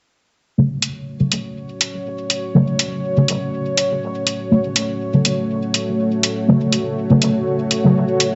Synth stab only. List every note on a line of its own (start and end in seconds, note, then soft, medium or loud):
0.58 0.77 C#3 medium
0.58 0.77 F#3 medium
0.58 0.77 A3 medium
1.20 1.50 C#3 medium
1.20 1.50 F#3 medium
1.20 1.50 A3 medium
2.54 3.13 C#3 medium
2.54 3.13 F#3 medium
2.54 3.13 A3 loud
3.17 3.36 C#3 medium
3.17 3.36 F#3 medium
3.17 3.36 A3 medium
4.51 4.71 C#3 medium
4.51 4.71 F#3 medium
4.51 4.71 A3 loud
5.13 5.44 C#3 medium
5.13 5.44 F#3 medium
5.13 5.44 A3 medium
6.48 7.07 C#3 medium
6.48 7.07 F#3 medium
6.48 7.07 A3 loud
7.10 7.29 C#3 medium
7.10 7.29 F#3 medium
7.10 7.29 A3 medium
7.84 8.03 C#3 medium
7.84 8.03 F#3 medium
7.84 8.03 A3 medium